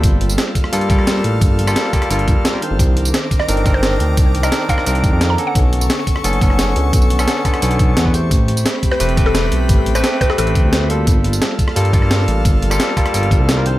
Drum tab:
HH |x-xxx-x-xxx-x-x-|x-xxx-xxxxx-x-x-|x-xxx-x-xxx-x-x-|x-xxx-x-xxx-x-x-|
TB |x--xx-x-x-x-x---|x--xx-x-x-x-x---|x--xx-x-x-x-x---|x--xx-x-x-x-x---|
SD |----o--r---ro---|---ro-rr----o---|----o--r---ro---|---ro-rr----o---|
BD |o-----o---o-----|o-----o---o-----|o-----o---o-----|o-----o---o-----|

HH |x-xxx-x-xxx-x-x-|x-xxx-xxxxx-x-x-|x-xxx-x-xxx-x-x-|x-xxx-x-xxx-x-x-|
TB |x--xx-x-x-x-x---|xx-xx-x-x-x-x-x-|x--xx-x-x-x-x---|x--xx-x-x-x-x---|
SD |----o--r---ro---|---ro-rr----o---|----o--r---ro---|---ro-rr----o---|
BD |o-----o---o-----|o-----o---o--o--|o-----o---o-----|o-----o---o-----|

HH |x-xxx-x-xxx-x-x-|x-xxx-xxxxx-x-x-|
TB |x--xx-x-x-x-x---|x--xx-x-x-x-x---|
SD |----o--r---ro---|---ro-rr----o---|
BD |o-----o---o-----|o-----o---o-----|